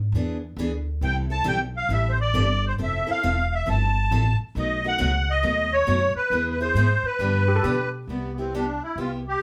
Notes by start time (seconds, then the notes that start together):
Already playing: G#2
0.12 E2 E3 B3 D4 G#4
0.57 D2 E3 B3 D4 G#4
1.01 C2 E3 G3 C4 E4 A4 G5
1.30 C4 E4 A4 A5
1.44 B1 E3 G3 C4 E4 A4 G5
1.77 F5
1.89 A1 E3 G3 C4 E4 A4 E5
2.10 C5
2.21 D5
2.34 G1 E3 G3 C4 E4 A4
2.68 C5
2.78 F1 F3 C4 E4 A4
2.83 E5
3.07 C4 E4 A4, muted upright bass stroke
3.11 F5
3.23 E1 F3 C4 E4 A4
3.54 E5
3.66 G1 F3 C4 E4 A4
3.70 A5
4.11 A1 F3 C4 E4 A4
4.39 muted upright bass stroke
4.55 B1 B2 F#3 A3 D#4 F#4
4.59 D#5
4.84 A3 D#4 F#4 F#5
4.98 C#2 B2 F#3 A3 D#4 F#4
5.31 D#5
5.43 D#2 B2 F#3 A3 D#4 F#4
5.73 C#5
5.87 F#2 B2 F#3 A3 D#4 F#4
6.15 B4, muted upright bass stroke
6.30 E2 E3 G#3 B3 E4 G#4
6.51 B4
6.61 B3 E4 G#4 C5
6.74 G#2 E3 G#3 B3 E4 G#4
7.03 B4, muted upright bass stroke
7.19 G2 D3 F3 B3 D4 G4
7.48 G4
7.56 A4
7.63 B2 D3 F3 B3 D4 G4
8.07 C2 C3 G3 B3 E4 G4
8.38 B3 C4 E4 G4
8.54 C3 G3 B3 D4 E4 G4
8.83 E4
8.96 C2 C3 G3 B3 E4 F4 G4
9.28 G4